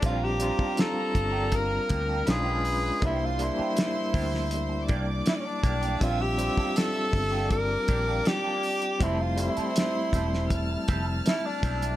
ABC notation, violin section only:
X:1
M:4/4
L:1/8
Q:1/4=80
K:Bblyd
V:1 name="Violin section"
[B,b]6 [=B=b]2 | [cc']4- [cc'] [dd']3 | [ee']4 [dd']4 | [cc']4 [af']4 |]